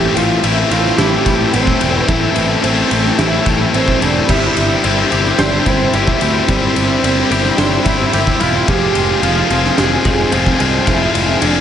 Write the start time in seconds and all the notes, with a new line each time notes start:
Already playing: A2 E3 A3 C4 E4 G4 A4 G5
0.16 A1 E3 F4, ride
0.43 A1 A2 E3 A3 C4 E4, ride
0.70 A1 A2 E3 A3 C4 E4 F4, ride
0.85 snare
0.98 A1 A2 E3 A3 C4 E4 G4, snare, ride
1.26 A1 G3, kick, ride
1.53 A1 A2 E3 A3 C4 E4, ride
1.67 kick
1.79 E1 A2 E3 G3 A3 C4 E4, ride
1.95 B3
2.08 A1 A2 E3 A3 C4 E4, kick, ride
2.36 A1 E3, ride
2.63 A1 A2 E3 A3 C4 E4, ride
2.91 A1 A2 E3 A3 C4 E4, ride
3.05 snare
3.19 A1 A2 E3 A3 C4 E4, snare, ride
3.46 A1 G3, kick, ride
3.73 A1 A2 E3 A3 C4 E4, ride
3.88 kick
4.01 E1 A2 E3 G3 A3 C4 D4 E4, ride
4.29 G1 G3 C4 E4 G4 C5 E5, kick, crash
4.56 G1, ride
4.84 G1 G3 C4 E4 G4, ride
5.11 G1 G3 C4 E4 G4, ride
5.25 snare
5.39 G1 G3 C4 D4 E4 G4 C5, snare, ride
5.66 G1 C4 E4, kick, ride
5.93 G1 G3 C4 E4 G4, ride
6.07 kick
6.21 D2 G3 C4 E4 G4, ride
6.48 G1 G3 C4 E4 G4 B5, kick, ride
6.76 G1, ride
7.03 G1 G3 C4 E4 G4, ride
7.31 G1 G3 C4 E4 G4, ride
7.45 snare
7.57 G1 G3 C4 D4 E4 G4 C5, snare, ride
7.84 G1 E4, kick, ride
8.13 G1 G3 C4 E4 G4, ride
8.27 kick
8.40 E1 G3 C4 E4 F4 G4, ride
8.67 F1 F3 C4 F4 G4 G#4 G5 G#5, kick, ride
8.95 F1 G#3, ride
9.22 F1 F3 C4 F4 G#4, ride
9.50 F1 F3 C4 F4 G#4, ride
9.64 snare
9.78 F1 F3 C4 F4 G#4, snare, ride
10.05 F1 G#3, kick, ride
10.32 F1 F3 C4 F4 G#4, ride
10.46 kick
10.60 C2 F3 G#3 C4 F4 G#4, ride
10.86 F1 F3 C4 E4 F4 G#4, kick, ride
11.14 F1 G#3, ride
11.41 F1 F3 C4 D4 F4 G#4, ride